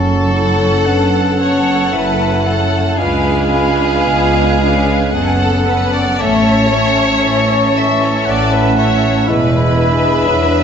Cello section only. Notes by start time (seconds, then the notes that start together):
Already playing: F#2
0.87 F#2
1.93 F#2
3.00 C#2
4.07 C#2
5.12 F#2
6.18 A2
7.24 A2
8.27 A2
9.28 E2
10.29 E2